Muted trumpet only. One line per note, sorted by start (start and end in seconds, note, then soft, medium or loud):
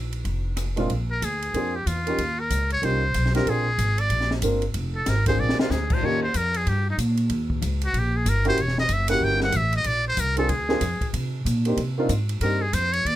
1.11 1.26 A#4 medium
1.24 1.77 G#4 medium
1.76 1.88 G4 medium
1.87 2.41 F4 medium
2.40 2.71 A#4 medium
2.73 2.86 C#5 loud
2.85 3.35 C5 medium
3.35 3.51 A#4 medium
3.49 4.01 G#4 medium
4.00 4.31 D5 loud
4.96 5.11 A4 medium
5.09 5.27 A#4 medium
5.27 5.41 C5 medium
5.40 5.59 D5 loud
5.60 5.72 F4 medium
5.71 5.95 G#4 medium
5.93 6.06 C5 medium
6.05 6.22 C#5 medium
6.23 6.38 C5 medium
6.37 6.58 A#4 medium
6.57 6.70 G#4 medium
6.69 6.87 G4 medium
6.90 6.96 D#4 medium
7.85 8.00 F#4 medium
7.99 8.18 G4 medium
8.17 8.30 G#4 medium
8.29 8.47 A#4 medium
8.48 8.63 C5 loud
8.62 8.79 C#5 medium
8.80 8.94 D#5 loud
8.93 9.09 E5 medium
9.10 9.25 F#5 loud
9.24 9.42 G5 medium
9.43 9.58 F#5 medium
9.57 9.75 E5 medium
9.76 9.89 D#5 loud
9.87 10.06 D5 medium
10.08 10.21 C5 medium
10.20 10.38 A#4 medium
10.38 10.51 A4 medium
10.49 11.13 G#4 medium
12.42 12.63 A#4 medium
12.61 12.75 G#4 medium
12.74 12.94 C5 loud
12.93 13.08 C#5 loud
13.06 13.16 D5 medium